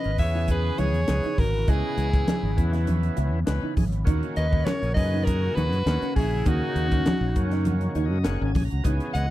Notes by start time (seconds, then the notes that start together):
Already playing: C#3 E3 B3 B4 D#5
0.04 G#1 C#4 A#4, closed hi-hat
0.18 E2 E3 B3 C#4 G#4 E5, kick, open hi-hat, muted conga
0.23 C#5
0.35 E4
0.48 B4, kick, closed hi-hat, muted conga
0.52 G#4
0.78 C#2 E4 C#5, closed hi-hat, muted conga, high conga
0.83 G#4
0.94 E2, closed hi-hat
1.08 C#2 E3 B3 C#4 G#4, snare, closed hi-hat, high conga
1.23 D#4, closed hi-hat
1.37 G#1 C#4 F#4 G#4 A#4, kick, open hi-hat
1.67 C#2 E3 B3 C#4 E4 G#4 D#5, kick, closed hi-hat, muted conga
1.97 C#2, closed hi-hat
2.13 E3 B3 C#4 G#4, kick, closed hi-hat
2.27 C#4 G#4, snare, closed hi-hat, high conga
2.43 G#1 C#4 D#4
2.56 E2 E3 B3 C#4 E4, kick, closed hi-hat, muted conga
2.73 E4, snare, closed hi-hat
2.87 closed hi-hat, muted conga, high conga
3.03 closed hi-hat
3.17 C#2 E4, closed hi-hat, muted conga
3.33 E2
3.46 C#2 E3 B3 C#4 B4, snare, closed hi-hat
3.63 D#4, muted fingered electric bass stroke
3.76 G#1 C#4 G#4, kick, open hi-hat, high conga
3.92 closed hi-hat
4.05 D#2 C#3 D#3 A#3 C#4 D#4 F#4, kick, closed hi-hat, muted conga
4.23 closed hi-hat
4.36 D#2 B4 D#5, closed hi-hat
4.50 D#3 A#3 C#4 F#4, kick
4.65 C#4 F#4 A#4 C#5, snare, closed hi-hat, high conga
4.82 A#1 C#4 G#4, closed hi-hat
4.94 F#2 A#2 D#3 C#4 G#4 D#5, kick, open hi-hat, muted conga
4.99 B4
5.14 D#4
5.24 F#4 A#4, kick, closed hi-hat, muted conga
5.55 D#2 D#4 F#4 B4, closed hi-hat, muted conga, high conga
5.72 F#2, closed hi-hat
5.86 D#2 D#3 A#3 C#4 F#4, snare, closed hi-hat, high conga
6.02 C#4, muted fingered electric bass stroke, closed hi-hat
6.15 A#1 C#4 D#4 E4 G#4, kick, open hi-hat
6.45 D#2 D#3 A#3 C#4 D#4 F#4 G#4, kick, closed hi-hat, muted conga
6.76 D#2, closed hi-hat
6.91 D#3 A#3 C#4 F#4, kick, closed hi-hat
7.06 C#4 F#4, snare, closed hi-hat, high conga
7.21 A#1 C#4 D#4
7.36 F#2 D#3 A#3 C#4 F#4, kick, closed hi-hat, muted conga
7.51 D#4, snare, closed hi-hat
7.65 closed hi-hat, muted conga, high conga
7.81 closed hi-hat
7.95 D#2 D#4 C#5, closed hi-hat, muted conga
8.05 D#5
8.11 F#2
8.23 F#1 D#3 A#3 C#4 G#4 F#5, snare, closed hi-hat
8.41 G#1 C#4
8.45 G#5
8.55 A#1 C#4 G#4, kick, open hi-hat, high conga
8.65 A#5
8.71 C#2, closed hi-hat
8.84 C#2 C#3 E3 B3 C#4 D#4 G#4, kick, closed hi-hat, muted conga
9.00 closed hi-hat
9.14 C#2 D#5 F#5, closed hi-hat